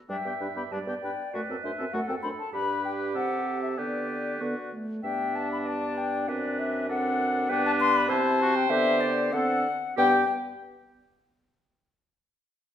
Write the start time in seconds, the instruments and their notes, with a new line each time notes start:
0.09 bassoon G2, french horn G3, oboe D4, clarinet E5, flute G5
0.25 bassoon G2, french horn B3, oboe G4
0.40 bassoon G2, french horn D4, oboe B4
0.56 bassoon G2, french horn B3, oboe G4, flute B5
0.71 bassoon G2, french horn G3, oboe D4, clarinet D5, flute A5
0.87 bassoon G2, french horn B3, oboe G4
1.02 bassoon G2, french horn D4, oboe B4, flute G5
1.33 bassoon F#2, french horn A3, oboe F#4, clarinet B4, flute D5
1.49 bassoon F#2, french horn C4, oboe A4
1.64 bassoon F#2, french horn D4, oboe C5, flute E5
1.78 bassoon F#2, french horn C4, oboe A4
1.93 bassoon F#2, french horn A3, oboe F#4, clarinet A4, flute F#5
2.08 bassoon F#2, french horn C4, oboe A4, flute G5
2.22 bassoon F#2, french horn D4, oboe C5, flute B5
2.39 flute A5
2.53 bassoon G2, french horn D4, clarinet G4, oboe B4, flute B5
2.85 flute G5
3.15 bassoon C3, french horn C4, oboe A4, flute F#5
3.63 flute E5
3.77 bassoon D3, french horn B3, oboe G4, clarinet B4, flute D5
4.41 bassoon D3, french horn B3, oboe F#4
4.72 french horn A3
5.03 bassoon G2, french horn B3, oboe D4, clarinet E5, flute G5
5.36 flute A5
5.52 flute B5
5.66 clarinet D5, flute A5
5.98 flute G5
6.28 bassoon F#2, french horn C4, oboe D4, clarinet B4, flute D5
6.59 flute E5
6.89 french horn C4, oboe D4, clarinet A4, flute F#5
7.49 bassoon G2, french horn B3, oboe D4, clarinet B4, flute G5
7.66 flute A5
7.80 flute C6
7.97 flute B5
8.09 bassoon C3, french horn C4, oboe E4, clarinet C5, flute A5
8.42 oboe F#4
8.56 flute G5
8.70 bassoon D3, french horn B3, oboe G4, flute E5
9.01 flute D5
9.33 bassoon D3, french horn C4, clarinet A4, oboe A4, flute F#5
9.97 bassoon G2, french horn B3, clarinet G4, flute G5, oboe G5